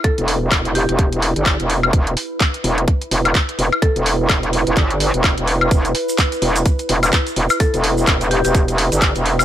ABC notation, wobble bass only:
X:1
M:4/4
L:1/16
Q:"Swing 16ths" 1/4=127
K:Em
V:1 name="Wobble bass" clef=bass
z E,,,3 E,,,3 E,,,4 G,,,2 E,,,3 | E,,,2 z4 E,,,2 z2 E,,,2 z2 E,,, z | z E,,,3 E,,,3 E,,, G,,,3 E,,,2 E,,,3 | E,,,2 z4 E,,,2 z2 E,,,2 z2 E,,, z |
z E,,,3 E,,,3 E,,,4 G,,,2 E,,,3 |]